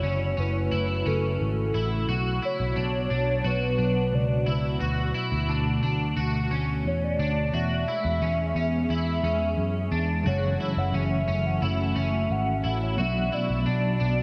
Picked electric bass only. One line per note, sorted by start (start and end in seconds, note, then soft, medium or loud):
0.03 0.33 F#1 medium
0.38 0.68 F#1 medium
0.72 1.02 F#1 medium
1.06 1.36 F#1 medium
1.41 1.70 G#1 medium
1.74 2.04 A1 medium
2.09 2.38 B1 medium
2.60 2.74 B1 medium
2.76 3.06 B1 medium
3.11 3.40 B1 medium
3.44 3.74 B1 medium
3.79 4.09 B1 medium
4.13 4.43 C#2 medium
4.47 4.77 C#2 medium
4.81 5.11 D2 medium
5.32 5.47 D2 medium
5.48 5.78 D2 medium
5.83 6.13 D2 medium
6.17 6.47 D2 medium
6.51 6.81 D2 medium
6.85 7.15 E2 medium
7.19 7.49 D2 medium
7.53 7.83 E2 medium
8.04 8.19 E2 medium
8.22 8.52 E2 medium
8.55 8.85 E2 medium
8.89 9.19 E2 medium
9.23 9.54 E2 loud
9.58 9.88 F#2 medium
9.91 10.22 E2 medium
10.26 10.56 F#1 medium
10.77 10.92 F#1 medium
10.93 11.24 F#1 medium
11.28 11.58 F#1 medium
11.62 11.92 F#1 medium
11.96 12.26 F#1 medium
12.30 12.60 G#1 medium
12.64 12.95 A1 medium
12.99 13.29 B1 loud
13.50 13.65 B1 medium
13.67 13.97 B1 medium
14.01 14.23 B1 medium